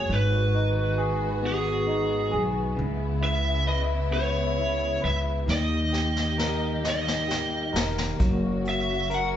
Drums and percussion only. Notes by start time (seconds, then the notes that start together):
5.49 snare
5.94 snare
6.16 snare
6.39 snare
6.85 snare
7.08 snare
7.30 snare
7.76 snare
7.98 snare
8.20 kick, closed hi-hat
8.65 closed hi-hat
9.10 closed hi-hat